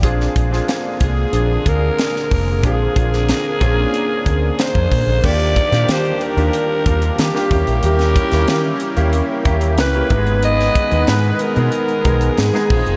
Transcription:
0.03 A#1 D3 A#3 C4 D4 F4 G#4, kick, closed hi-hat
0.20 snare
0.36 A#1, kick, closed hi-hat
0.51 C4 D4 F4 G#4, snare
0.68 snare, closed hi-hat
1.00 C2 G#4, kick, closed hi-hat
1.32 A#1 C4 D4 F4 G#4, closed hi-hat
1.66 D2 A#4, kick, closed hi-hat
1.99 snare, closed hi-hat
2.16 snare
2.31 F1 A#4, kick, open hi-hat
2.63 A#1 C4 D4 F4 G#4 A#4, kick, closed hi-hat
2.96 A#1 C4 D4 F4 G#4, kick, closed hi-hat
3.13 snare
3.29 snare, closed hi-hat
3.61 A#1 C4 C#4 F4 G#4, kick, closed hi-hat
3.67 D4
3.94 closed hi-hat
4.26 D2, kick, closed hi-hat
4.59 C5, snare, closed hi-hat
4.75 F2, kick
4.91 A#2, kick, open hi-hat
5.07 A#1
5.23 D#2 D#3 A#3 D4 F4 G4 D5, kick, crash
5.40 closed hi-hat
5.56 kick, closed hi-hat
5.72 A#2 A#3 D4 F4 G4, snare, closed hi-hat
5.89 C5, snare, closed hi-hat
6.05 closed hi-hat
6.21 A#4, closed hi-hat
6.37 D#2 A#3 D4 F4 G4, closed hi-hat
6.53 closed hi-hat
6.85 D#2 A#3 D4 F4 A#4, kick, closed hi-hat
7.02 closed hi-hat
7.19 D#3 G4, snare, closed hi-hat
7.34 A#3 D4 F4 G4, snare
7.50 D#2 G3 A#3 C#4 E4 G4 A#4, kick, closed hi-hat
7.67 A#1, closed hi-hat
7.83 D#2 G4, closed hi-hat
7.99 snare, closed hi-hat
8.16 kick, closed hi-hat
8.31 D#2 A#3 C#4 E4 A#4, snare, closed hi-hat
8.48 D#3, snare, closed hi-hat
8.80 closed hi-hat
8.96 D#2 A#3 C#4 E4 G4, closed hi-hat
9.13 closed hi-hat
9.45 D#2 A#3 C#4 E4 G4, kick, closed hi-hat
9.61 closed hi-hat
9.78 C#2 B4, snare, closed hi-hat
9.94 A#3 C#4 E4 G4, closed hi-hat
10.10 G#1 D#3 G#3 B3 D#4 G4 G#4 B4, kick, closed hi-hat
10.18 G#4
10.27 closed hi-hat
10.43 D#5, closed hi-hat
10.60 snare
10.75 kick, closed hi-hat
10.91 D#2 G#3 B3 D#4 B4, closed hi-hat
11.07 G#2 B4, snare, closed hi-hat
11.24 closed hi-hat
11.39 A#4, closed hi-hat
11.56 B2 G#3 B3 D#4 G#4, closed hi-hat
11.72 closed hi-hat
11.89 closed hi-hat
12.04 B1 G#3 B3 D#4 G#4, kick, closed hi-hat
12.21 closed hi-hat
12.38 G#2 G#4, snare, closed hi-hat
12.53 G#3 B3 D#4 G#4, snare, closed hi-hat
12.70 A#1 G#3 A#3 C4 D4 F4 G#4 C5, kick, crash
12.77 D#4
12.87 F1, closed hi-hat

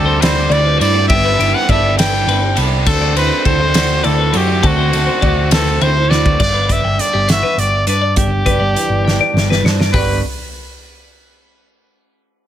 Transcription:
Already playing: D2 D3 G3 A3 C4 F#4 G4 A4
0.06 C5
0.19 D3 A3 C4 E4 F#4 C5 D5, ride
0.23 snare
0.38 G4
0.50 D2 A2 E4 D5, ride
0.65 G4 B4
0.78 G2 D3 A3 C4 E4 F#4 C5 D5, ride
0.94 G4 D5
1.08 G1 G2 G3 B3 D4 G4 E5, kick, ride
1.25 B4
1.38 G1 G3 B3 D4 E4 G4, ride
1.54 B4 F#5
1.68 G1 D3 G3 B3 D4 G4 D5 E5, kick, ride
1.97 G3 B3 D4 E4 G4 B4 G5, snare, ride
2.14 G4
2.25 G1 G2 D4
2.29 B4, ride
2.43 G4
2.56 C2 G3 B3 D4 E4 G4 A4, ride
2.85 D2 D3 A3 C4 F#4 A4 C5, kick, crash
3.02 D5
3.15 D2 D3 A3 C4 E4 F#4 B4 C5, ride
3.31 F#4
3.45 D2 D3 A3 C4 E4 F#4 A4 C5, kick, ride
3.58 F#4 C5
3.74 D3 A3 C4 F#4 D5, snare, ride
4.02 D2 A2 E4 A4 D5, ride
4.18 F#4 B4
4.33 F#2 D3 A3 C4 F#4 G4 C5, ride
4.47 D5
4.62 D2 D3 A3 C4 F#4 A4, kick, ride
4.66 F#4
4.78 C5
4.91 D2 D3 A3 C4 F#4 A4, ride
5.07 C5
5.21 D2 D3 A3 C4 F#4 D5, kick, ride
5.51 D3 A3 C4 F#4 A4 B4, snare, ride
5.66 A4
5.81 D2 A2 E4 C5, ride
5.95 F#4 A4
6.10 D2 D3 A3 C4 E4 F#4 B4 D5, snare
6.26 F#4, kick
6.39 G1 G2 D5, kick, crash
6.54 B4
6.69 B3 D5 E5, kick, closed hi-hat
6.83 G1 D4 G5
6.98 D3 D5, closed hi-hat
7.13 G1 G4
7.28 F#4 B4 E5, snare, closed hi-hat
7.43 B4
7.57 G1 G2 G4 D5, closed hi-hat
7.86 G2 D4 B4 D5, closed hi-hat
8.02 D5
8.16 G1 G2 G4 E5, kick, closed hi-hat
8.31 D5
8.46 D4 B4, kick, closed hi-hat
8.60 G1 D5
8.75 E3 D5, closed hi-hat
8.90 G1
9.05 D4 G5, snare
9.21 D5
9.33 G1 G2
9.37 snare
9.50 B4, snare
9.64 G2 D4 C5, snare
9.80 D5, snare
9.92 G1 G2 D3 B3 D4 G4 B4, kick, floor tom, open hi-hat
9.97 F#4

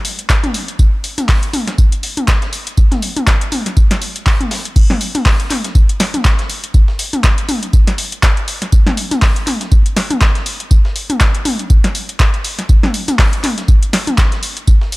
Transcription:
0.05 open hi-hat, tambourine
0.19 closed hi-hat
0.29 kick, snare, clap, tambourine
0.44 closed hi-hat, mid tom
0.54 open hi-hat, tambourine
0.68 closed hi-hat
0.79 kick, tambourine
1.04 open hi-hat, tambourine
1.18 closed hi-hat, mid tom
1.29 kick, snare, clap, open hi-hat
1.43 closed hi-hat
1.53 open hi-hat, mid tom, tambourine
1.67 snare, closed hi-hat
1.78 kick, tambourine
1.92 closed hi-hat
2.03 open hi-hat, tambourine
2.17 closed hi-hat, mid tom
2.28 kick, snare, clap, tambourine
2.42 snare, closed hi-hat
2.53 open hi-hat, tambourine
2.67 closed hi-hat
2.77 kick, tambourine
2.91 snare, closed hi-hat, mid tom
3.02 open hi-hat, tambourine
3.16 closed hi-hat, mid tom
3.27 kick, snare, clap, tambourine
3.41 closed hi-hat
3.52 open hi-hat, mid tom, tambourine
3.66 snare, closed hi-hat
3.77 kick, tambourine
3.91 snare, closed hi-hat
4.01 open hi-hat, tambourine
4.16 closed hi-hat
4.26 kick, snare, clap, open hi-hat
4.41 closed hi-hat, mid tom
4.51 snare, open hi-hat
4.65 closed hi-hat
4.76 kick, crash, tambourine
4.90 snare, mid tom
5.01 open hi-hat, tambourine
5.15 closed hi-hat, mid tom
5.25 kick, snare, clap, open hi-hat
5.40 closed hi-hat
5.50 clap, open hi-hat, mid tom, tambourine
5.64 snare, closed hi-hat
5.75 kick, tambourine
5.89 closed hi-hat
6.00 snare, open hi-hat, tambourine
6.14 closed hi-hat, mid tom
6.25 kick, snare, clap, tambourine
6.39 snare, closed hi-hat
6.49 open hi-hat, tambourine
6.64 closed hi-hat
6.74 kick, tambourine
6.88 snare
6.99 open hi-hat, tambourine
7.13 closed hi-hat, mid tom
7.24 kick, snare, clap, tambourine
7.38 closed hi-hat
7.49 open hi-hat, mid tom, tambourine
7.63 closed hi-hat
7.73 kick, tambourine
7.87 snare, closed hi-hat
7.98 open hi-hat, tambourine
8.12 closed hi-hat
8.23 kick, snare, clap, tambourine
8.37 closed hi-hat
8.48 open hi-hat, tambourine
8.62 snare, closed hi-hat
8.72 kick, tambourine
8.87 snare, mid tom
8.97 open hi-hat, tambourine
9.11 closed hi-hat, mid tom
9.22 kick, snare, clap, open hi-hat
9.36 closed hi-hat
9.47 clap, open hi-hat, mid tom, tambourine
9.61 snare, closed hi-hat
9.72 kick, tambourine
9.86 closed hi-hat
9.96 snare, open hi-hat, tambourine
10.11 closed hi-hat, mid tom
10.21 kick, snare, clap, tambourine
10.35 snare, closed hi-hat
10.46 open hi-hat, tambourine
10.60 closed hi-hat
10.71 kick, tambourine
10.85 snare
10.96 open hi-hat, tambourine
11.10 closed hi-hat, mid tom
11.20 kick, snare, clap, tambourine
11.35 closed hi-hat
11.45 open hi-hat, mid tom, tambourine
11.59 closed hi-hat
11.70 kick, tambourine
11.84 snare, closed hi-hat
11.95 open hi-hat, tambourine
12.09 closed hi-hat
12.19 kick, snare, clap, tambourine
12.34 closed hi-hat
12.44 open hi-hat, tambourine
12.59 snare, closed hi-hat
12.69 kick, tambourine
12.83 snare, mid tom
12.94 open hi-hat, tambourine
13.08 closed hi-hat, mid tom
13.19 kick, snare, clap, open hi-hat
13.33 closed hi-hat
13.44 clap, open hi-hat, mid tom, tambourine
13.58 snare, closed hi-hat
13.68 kick, tambourine
13.83 closed hi-hat
13.93 snare, open hi-hat, tambourine
14.07 closed hi-hat, mid tom
14.18 kick, snare, clap, tambourine
14.32 snare, closed hi-hat
14.43 open hi-hat, tambourine
14.57 closed hi-hat
14.67 kick, tambourine
14.81 snare
14.92 open hi-hat, tambourine

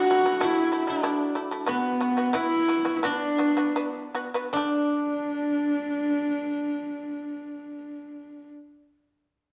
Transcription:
Already playing: D4 E4 F#4
0.10 A3 E4
0.26 A3 E4
0.41 A3 E4
0.72 A3 E4
0.82 E4
0.87 A3 D4 E4
1.03 A3 E4
1.35 A3 E4
1.51 A3 E4
1.66 B3 F#4
2.01 B3 F#4
2.17 B3 F#4
2.33 B3 E4 F#4
2.68 B3 F#4
2.85 B3 F#4
2.96 E4
3.03 B3 D4 F#4
3.38 B3 F#4
3.57 B3 F#4
3.76 B3 F#4
4.15 B3 F#4
4.34 B3 F#4
4.53 D3 A3 D4

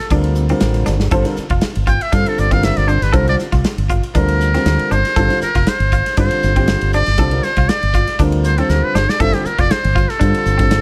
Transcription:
Already playing: A4
0.10 D2 D3 G3 C4 D4 F4 A#4, kick, hi-hat pedal, ride
0.24 ride
0.35 hi-hat pedal
0.49 D3 G3 C4 F4 A#4, ride
0.60 A1, snare, hi-hat pedal, ride
0.74 snare, ride
0.86 G1 D4, snare, hi-hat pedal
1.00 F4 C5, snare
1.11 G1 D3 G3 C4 F4 A4 C5, kick, hi-hat pedal, ride
1.25 D3 G3 C4 F4 A#4, snare, ride
1.36 F4 C5, muted fretless electric bass stroke, snare, hi-hat pedal
1.50 F1 F4, kick, ride
1.61 snare, hi-hat pedal, ride
1.75 G1, ride
1.87 F4 G5, kick, hi-hat pedal
2.01 E5, ride
2.12 G2 D3 G3 C4 D4 F4 A4 F5, kick, hi-hat pedal, ride
2.26 A4, ride
2.38 G1 D5, hi-hat pedal
2.51 D3 G3 C4 F4 A#4 F5, kick, snare, ride
2.63 E5, snare, hi-hat pedal, ride
2.77 G1 D5, snare, ride
2.88 D4 C5, hi-hat pedal
3.02 G1 F4 G4 B4, snare, ride
3.12 C2 D3 G3 C4 F4 A4 A#4 C5, kick, hi-hat pedal, ride
3.27 D3 G3 C4 F4 C5 D5, ride
3.39 F4 A4, snare, hi-hat pedal
3.52 C2 F4, kick, snare, ride
3.64 snare, hi-hat pedal, ride
3.78 G1, ride
3.90 F4, kick, hi-hat pedal
4.03 ride
4.14 D2 D3 G3 C4 D4 F4 A#4, kick, hi-hat pedal, ride
4.28 ride
4.41 hi-hat pedal
4.54 D3 G3 C4 F4 A#4, snare, ride
4.65 D2, snare, hi-hat pedal, ride
4.79 muted fretless electric bass stroke, ride
4.91 G1 D4 C5, hi-hat pedal
5.05 F4 A#4, snare, ride
5.16 G1 D3 G3 C4 F4 A4, kick, hi-hat pedal, ride
5.30 D3 G3 C4 F4 G4, snare, ride
5.41 F4 A4 A#4, muted fretless electric bass stroke, snare, hi-hat pedal
5.55 F1 F4, kick, snare, ride
5.67 C5, snare, hi-hat pedal, ride
5.80 G1, ride
5.92 F4, kick, hi-hat pedal
6.06 snare, ride
6.17 G2 D3 G3 C4 D4 F4 C5, kick, hi-hat pedal, ride
6.31 ride
6.43 G1, hi-hat pedal
6.56 D3 G3 C4 F4 G4, kick, ride
6.68 snare, hi-hat pedal, ride
6.81 G1, ride
6.93 D4 D5, hi-hat pedal
7.06 G1 F4 G4, snare, ride
7.18 C2 D3 G3 C4 F4 A4, kick, hi-hat pedal, ride
7.31 D3 G3 C4 F4 A#4, ride
7.43 F4 C5, snare, hi-hat pedal
7.56 C2 F4, kick, snare, ride
7.69 D5, snare, hi-hat pedal, ride
7.83 G1, ride
7.94 F4, kick, hi-hat pedal
8.07 snare, ride
8.19 D2 D3 G3 C4 D4 F4 A#4, kick, hi-hat pedal, ride
8.32 ride
8.44 C5, hi-hat pedal
8.58 D3 G3 C4 F4 A4 C5, ride
8.69 D2 A#4, snare, hi-hat pedal
8.84 B4
8.95 G1 D4 C5, snare, hi-hat pedal
9.08 F4 A4 D5, snare
9.20 G1 D3 G3 C4 F4 A4 E5, kick, hi-hat pedal, ride
9.33 D3 G3 C4 F4 G4 A4, snare, ride
9.45 F4 A#4, muted fretless electric bass stroke, hi-hat pedal
9.58 F1 F4 D5, kick, snare, ride
9.71 C5, snare, hi-hat pedal, ride
9.84 G1, ride
9.95 F4, kick, hi-hat pedal
10.09 A4, snare, ride
10.19 G2 D3 G3 C4 D4 F4 C5, kick, hi-hat pedal, ride
10.34 ride
10.46 G1, hi-hat pedal
10.58 D3 G3 C4 F4 A4, kick, snare, ride
10.71 snare, hi-hat pedal, ride

